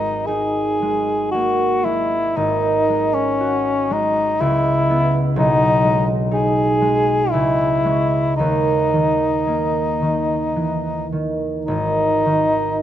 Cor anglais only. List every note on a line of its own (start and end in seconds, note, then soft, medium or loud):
0.00 0.28 D#4 medium
0.26 1.31 G#4 medium
1.31 1.86 F#4 medium
1.85 2.38 E4 soft
2.37 3.15 D#4 medium
3.14 3.94 C#4 medium
3.93 4.42 D#4 medium
4.41 5.21 E4 medium
5.38 6.06 D#4 medium
6.34 7.32 G#4 medium
7.31 8.36 E4 medium
8.36 11.06 D#4 medium
11.65 12.82 D#4 medium